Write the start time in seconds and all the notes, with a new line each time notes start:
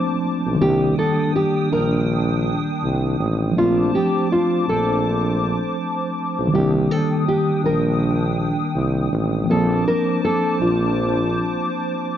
Already playing: F3 A3 C4 D4 C5 A5 D6
0.46 B1
0.55 D#3 G3
0.60 C2 A#3 D4 G4 G5 D#6
0.65 D4
0.99 A4
1.36 G4
1.71 A#1 A#4
2.83 C2
3.20 A1
3.52 F3 A3
3.56 A#1 C4 F4 C5 A5 D6
3.62 D4
3.95 G4
4.32 F4
4.68 A#1 A4
6.39 B1
6.48 D#3 G3
6.52 C2 A#3 D4 G4 G5 D#6
6.58 D4
6.91 A4
7.28 G4
7.64 A#1 A#4
8.75 C2
9.12 A1
9.44 F3 A#3
9.49 A#1 C4 A4 C5 A5 D6
9.54 D4
9.88 A#4
10.25 A4
10.60 A#1 F4